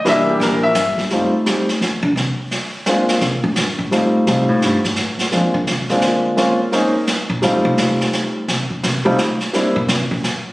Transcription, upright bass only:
X:1
M:3/4
L:1/8
Q:"Swing" 1/4=171
K:Fmix
V:1 name="Upright bass" clef=bass
C,,2 B,,,2 G,,,2 | z4 E, D, | C, z4 z | C, A,, G,, A,,3 |
C, A,, G,, A,,3 | F, D, C, D,3 | z4 z B,, | A,, C, C, z3 |
C, A,, C, C, z2 | z B,, C, B,, z2 |]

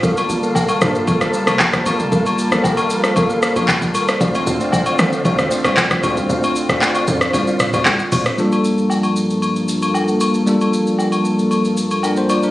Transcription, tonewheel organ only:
X:1
M:4/4
L:1/16
Q:1/4=115
K:Gm
V:1 name="Tonewheel organ"
[ABf] z2 [ABf]3 [ABf]2 [ABf]3 [ABf] z2 [ABf] z | [ABf] z2 [ABf]3 [ABf]2 [ABf]3 [ABf] z2 [ABf] z | [cdf] z2 [cdf]3 [cdf]2 [cdf]3 [cdf] z2 [cdf] z | [cdf] z2 [cdf]3 [cdf]2 [cdf]3 [cdf] z2 [cdf] z |
z16 | z16 |]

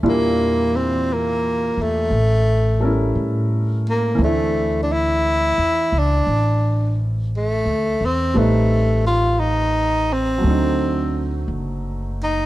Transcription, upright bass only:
X:1
M:4/4
L:1/8
Q:"Swing" 1/4=58
K:Dm
V:1 name="Upright bass" clef=bass
E,,3 E,, A,,,2 A,,2 | D,,2- (3D,, E,, _D,, A,,,2- (3A,,, =D,, E,, | A,,,4 D,,2 ^F,,,2 |]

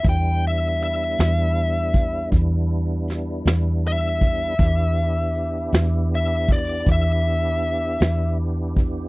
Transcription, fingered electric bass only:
X:1
M:12/8
L:1/8
Q:3/8=53
K:Em
V:1 name="Fingered electric bass" clef=bass
E,,3 E,,3 E,,3 E,,3 | E,,3 E,,3 E,,3 E,,3 |]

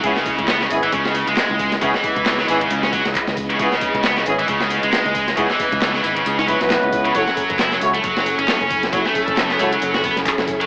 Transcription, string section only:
X:1
M:4/4
L:1/8
Q:"Swing 16ths" 1/4=135
K:C#phr
V:1 name="String section"
[C,G,B,E^d]8- | [C,G,B,E^d]8- | [C,G,B,E^d]8- | [C,G,B,E^d]8 |
[F,CEGA]8- | [F,CEGA]8 |]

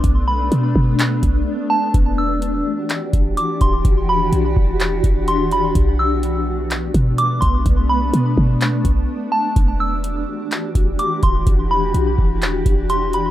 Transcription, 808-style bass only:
X:1
M:4/4
L:1/8
Q:1/4=126
K:Em
V:1 name="808-style bass" clef=bass
B,,,2 B,, B,,2 B,,, z2 | E,,,3 z2 E,,, z D,,, | E,,,2 B,,, E,,,2 E,,,3 | B,,,4- B,,, B,,2 B,,, |
B,,,2 B,, B,,2 B,,, z2 | E,,,3 z2 E,,, z D,,, | E,,,2 B,,, E,,,2 E,,,3 |]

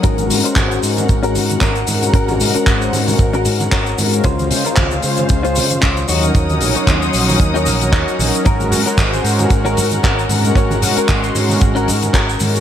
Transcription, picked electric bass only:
X:1
M:4/4
L:1/8
Q:"Swing 16ths" 1/4=114
K:Abmix
V:1 name="Picked electric bass" clef=bass
A,,, A,, A,,, A,, A,,, A,, A,,, A,, | A,,, A,, A,,, A,, A,,, A,, A,,, A,, | D,, D, D,, D, D,, D, D,, E,, | E,, B,,, E,, B,,, E,, B,,, E,, B,,, |
A,,, A,, A,,, A,, A,,, A,, A,,, A,, | A,,, A,, A,,, A,, A,,, A,, A,,, A,, |]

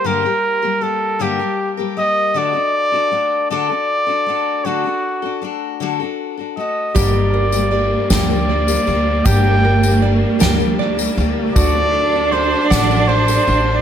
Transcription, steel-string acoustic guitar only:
X:1
M:6/8
L:1/16
Q:3/8=52
K:Gm
V:1 name="Steel-string acoustic guitar"
[G,,D,G,B,GB] [G,B,GB]2 [G,B,GB] [G,B,G]2 [G,,D,G,B,GB] [G,B,GB]2 [G,B,GB] [G,B,GB]2 | [D,A,D^FA] [DFA]2 [DFA] [A,DFA]2 [D,A,DFA] [DFA]2 [DFA] [A,DFA]2 | [D,A,D^FA] [DFA]2 [DFA] [A,DFA]2 [D,A,DFA] [DFA]2 [DFA] [A,FA]2 | [G,,D,G,B,GB] [G,B,GB]2 [G,B,GB] [G,B,GB]2 [G,,D,G,B,GB] [G,B,GB]2 [G,B,GB] [G,B,GB]2 |
[G,,D,G,B,GB] [G,B,GB]2 [G,B,GB] [G,B,GB]2 [G,,D,G,B,GB] [G,B,GB]2 [G,B,GB] [G,B,GB]2 | [D,A,D^FA] [DFA]2 [DFA] [A,DFA]2 [D,A,DFA] [DFA]2 [DFA] [A,DFA]2 |]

